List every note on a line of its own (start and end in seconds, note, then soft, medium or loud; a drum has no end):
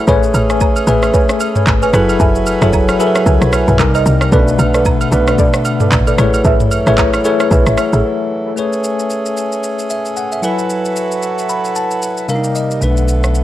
0.00 0.07 A3 medium
0.07 0.31 A1 loud
0.07 0.73 A3 loud
0.07 1.92 A3 medium
0.07 1.92 C#4 medium
0.07 1.92 G#4 medium
0.07 0.73 G#4 loud
0.07 0.21 B4 loud
0.07 0.73 B4 loud
0.07 0.21 C#5 medium
0.07 0.74 C#5 loud
0.07 0.21 G#5 loud
0.07 kick loud
0.07 shaker medium
0.23 shaker medium
0.34 0.81 A1 medium
0.34 high agogo medium
0.34 shaker medium
0.50 0.85 B4 medium
0.50 0.85 C#5 medium
0.50 0.85 G#5 medium
0.50 cross-stick medium
0.50 shaker medium
0.61 kick medium
0.61 low woodblock medium
0.61 shaker medium
0.76 high agogo medium
0.76 shaker medium
0.87 1.11 A1 loud
0.87 1.73 A3 medium
0.87 1.73 G#4 medium
0.87 1.12 B4 medium
0.87 1.73 B4 medium
0.87 1.12 C#5 medium
0.87 1.74 E5 loud
0.87 1.12 G#5 medium
0.87 shaker medium
1.03 cross-stick medium
1.03 high agogo medium
1.03 shaker medium
1.14 1.52 B4 loud
1.14 1.52 C#5 medium
1.14 1.52 G#5 loud
1.14 kick loud
1.14 shaker medium
1.29 cross-stick loud
1.29 shaker medium
1.40 high agogo medium
1.40 shaker medium
1.55 1.66 B4 medium
1.55 1.66 C#5 medium
1.55 1.66 G#5 medium
1.55 mid tom medium
1.55 shaker medium
1.67 1.90 G#1 medium
1.67 kick medium
1.67 clap medium
1.67 low woodblock medium
1.67 shaker medium
1.82 1.92 B4 medium
1.82 1.92 C#5 medium
1.82 1.92 G#5 medium
1.82 high agogo medium
1.82 shaker medium
1.93 2.17 F#1 loud
1.93 2.46 F#3 medium
1.93 3.77 F#3 medium
1.93 3.77 A3 medium
1.93 2.46 E4 medium
1.93 3.77 E4 medium
1.93 2.47 G#4 medium
1.93 2.47 A4 medium
1.93 3.77 B4 medium
1.93 2.47 B4 loud
1.93 3.77 G#5 medium
1.93 cross-stick loud
1.93 shaker medium
2.09 high agogo medium
2.09 shaker medium
2.20 2.57 F#1 loud
2.20 2.33 A4 loud
2.20 2.34 B4 medium
2.20 2.34 E5 medium
2.20 2.34 G#5 loud
2.20 kick loud
2.20 shaker medium
2.35 shaker medium
2.47 high agogo medium
2.47 shaker loud
2.62 2.95 F#1 loud
2.62 2.93 F#3 medium
2.62 2.93 E4 medium
2.62 2.93 G#4 medium
2.62 2.97 A4 medium
2.62 2.93 A4 medium
2.62 2.97 B4 medium
2.62 2.94 C#5 loud
2.62 2.97 E5 medium
2.62 2.97 G#5 medium
2.62 cross-stick loud
2.62 shaker medium
2.73 kick medium
2.73 low woodblock medium
2.73 shaker medium
2.89 cross-stick medium
2.89 high agogo medium
2.89 shaker medium
2.99 3.79 F#3 medium
2.99 3.79 E4 medium
2.99 3.79 G#4 medium
2.99 3.24 A4 medium
2.99 3.80 A4 medium
2.99 3.08 A#4 medium
2.99 3.24 B4 medium
2.99 3.25 E5 medium
2.99 3.25 G#5 medium
2.99 shaker medium
3.07 3.83 B4 medium
3.15 cross-stick loud
3.15 high agogo medium
3.15 shaker medium
3.26 3.40 C#2 medium
3.26 3.64 A4 loud
3.26 3.64 B4 medium
3.26 3.65 E5 medium
3.26 3.65 G#5 loud
3.26 kick loud
3.26 shaker medium
3.41 3.65 B1 loud
3.41 cross-stick loud
3.41 shaker medium
3.53 cross-stick loud
3.53 high agogo medium
3.53 shaker medium
3.68 4.01 B1 medium
3.68 3.78 A4 medium
3.68 3.78 B4 medium
3.68 3.78 E5 medium
3.68 3.78 G#5 medium
3.68 mid tom medium
3.68 shaker medium
3.79 4.23 C3 medium
3.79 4.32 C3 medium
3.79 4.23 G3 medium
3.79 4.32 G3 medium
3.79 4.32 A#3 medium
3.79 4.32 D#4 medium
3.79 4.24 D#4 medium
3.79 4.24 A#4 loud
3.79 kick medium
3.79 clap medium
3.79 low woodblock medium
3.79 shaker medium
3.94 4.04 A#4 medium
3.94 4.04 C5 medium
3.94 4.05 D#5 medium
3.94 high agogo medium
3.94 shaker medium
4.06 4.29 C2 medium
4.06 shaker medium
4.21 cross-stick loud
4.21 high agogo medium
4.21 shaker medium
4.32 4.56 B1 loud
4.32 4.98 B2 loud
4.32 6.16 D3 medium
4.32 4.98 A3 loud
4.32 8.53 A3 medium
4.32 6.16 B3 medium
4.32 4.40 C#4 medium
4.32 4.46 A4 loud
4.32 4.46 B4 medium
4.32 4.98 B4 loud
4.32 4.46 D5 loud
4.32 kick loud
4.32 shaker medium
4.39 5.01 D4 loud
4.48 shaker medium
4.59 5.06 B1 loud
4.59 high agogo medium
4.59 shaker medium
4.74 5.09 A4 medium
4.74 5.09 B4 medium
4.74 5.10 D5 medium
4.74 cross-stick medium
4.74 shaker medium
4.85 kick medium
4.85 low woodblock medium
4.85 shaker medium
5.01 high agogo medium
5.01 shaker medium
5.11 5.36 B1 medium
5.11 5.98 B2 medium
5.11 5.98 A3 medium
5.11 5.98 D4 medium
5.11 5.37 A4 medium
5.11 5.37 B4 medium
5.11 5.98 B4 medium
5.11 5.37 D5 medium
5.11 shaker medium
5.27 cross-stick loud
5.27 high agogo medium
5.27 shaker medium
5.38 5.77 A4 loud
5.38 5.77 B4 medium
5.38 5.77 D5 loud
5.38 kick loud
5.38 shaker medium
5.54 cross-stick loud
5.54 shaker medium
5.65 high agogo medium
5.65 shaker medium
5.80 5.90 A4 medium
5.80 5.90 B4 medium
5.80 5.91 D5 medium
5.80 mid tom medium
5.80 shaker medium
5.92 6.15 A1 loud
5.92 kick medium
5.92 clap medium
5.92 low woodblock medium
5.92 shaker medium
6.07 6.17 A4 medium
6.07 6.17 B4 medium
6.07 6.17 D5 medium
6.07 high agogo medium
6.07 shaker medium
6.18 6.42 A1 loud
6.18 8.55 E3 medium
6.18 8.55 F#3 medium
6.18 6.25 G#3 medium
6.18 6.71 E4 medium
6.18 6.71 G#4 medium
6.18 6.72 B4 medium
6.18 6.72 C#5 loud
6.18 cross-stick loud
6.18 shaker medium
6.24 6.74 A3 medium
6.34 high agogo medium
6.34 shaker medium
6.45 6.82 A1 loud
6.45 6.58 G#4 loud
6.45 6.58 A4 medium
6.45 6.59 B4 medium
6.45 6.59 E5 loud
6.45 kick loud
6.45 shaker medium
6.60 mid tom medium
6.60 shaker medium
6.71 high agogo medium
6.71 shaker medium
6.86 7.20 A1 loud
6.86 7.18 A3 medium
6.86 7.18 E4 medium
6.86 7.22 G#4 medium
6.86 7.18 G#4 medium
6.86 7.22 A4 medium
6.86 7.22 B4 medium
6.86 7.18 B4 medium
6.86 7.18 C#5 loud
6.86 7.22 E5 medium
6.86 cross-stick medium
6.86 shaker medium
6.98 kick medium
6.98 clap medium
6.98 low woodblock medium
6.98 shaker medium
7.13 cross-stick medium
7.13 high agogo medium
7.13 shaker medium
7.24 8.10 A3 medium
7.24 8.10 E4 medium
7.24 7.49 G#4 medium
7.24 8.10 G#4 medium
7.24 7.49 A4 medium
7.24 7.49 B4 medium
7.24 8.11 B4 medium
7.24 8.11 C#5 medium
7.24 7.49 E5 medium
7.24 shaker medium
7.40 cross-stick loud
7.40 high agogo medium
7.40 shaker medium
7.51 7.65 B1 medium
7.51 7.89 G#4 loud
7.51 7.89 A4 medium
7.51 7.89 B4 medium
7.51 7.90 E5 loud
7.51 kick loud
7.51 shaker medium
7.66 7.76 A1 loud
7.66 cross-stick loud
7.66 shaker medium
7.78 cross-stick loud
7.78 high agogo medium
7.78 shaker medium
7.93 8.03 A1 medium
7.93 8.03 G#4 medium
7.93 8.03 A4 medium
7.93 8.03 B4 medium
7.93 8.03 E5 medium
7.93 shaker soft
8.56 10.39 A3 medium
8.56 10.41 A3 medium
8.56 10.41 C#4 medium
8.56 10.39 G#4 medium
8.56 10.41 G#4 medium
8.56 10.40 B4 medium
8.56 10.40 C#5 medium
8.56 shaker medium
8.73 shaker medium
8.84 shaker medium
8.99 shaker medium
9.10 shaker medium
9.26 shaker medium
9.37 shaker medium
9.52 shaker soft
9.64 shaker medium
9.79 shaker medium
9.90 10.15 E5 medium
9.90 shaker medium
10.05 shaker soft
10.17 10.31 F#5 medium
10.17 shaker medium
10.32 10.57 E5 medium
10.32 shaker medium
10.42 12.25 F#3 medium
10.42 12.27 F#3 medium
10.42 12.25 E4 medium
10.42 12.27 E4 medium
10.42 12.27 F#4 medium
10.42 12.27 A4 medium
10.42 12.26 A4 medium
10.42 12.27 B4 medium
10.42 12.26 B4 medium
10.42 12.25 G#5 medium
10.42 shaker medium
10.59 shaker soft
10.70 shaker medium
10.85 shaker soft
10.96 shaker medium
11.12 shaker medium
11.23 shaker medium
11.38 shaker medium
11.49 11.74 B5 medium
11.49 shaker medium
11.65 shaker soft
11.76 12.25 A5 medium
11.76 shaker medium
11.91 shaker medium
12.02 shaker medium
12.17 shaker soft
12.28 12.82 C3 medium
12.28 12.81 C3 medium
12.28 12.82 G3 medium
12.28 12.81 G3 medium
12.28 12.81 A#3 medium
12.28 12.36 D4 medium
12.28 12.81 D#4 medium
12.28 12.82 A#4 medium
12.28 12.54 F5 medium
12.28 shaker medium
12.35 12.85 D#4 medium
12.44 shaker medium
12.55 12.80 D#5 medium
12.55 shaker medium
12.71 shaker soft
12.81 13.44 B1 medium
12.81 13.44 B2 medium
12.81 13.44 D3 medium
12.81 13.44 A3 medium
12.81 13.44 B3 medium
12.81 13.44 D4 medium
12.81 13.44 B4 medium
12.81 shaker medium
12.97 shaker medium
13.08 shaker medium
13.24 cross-stick medium
13.24 shaker medium
13.35 shaker medium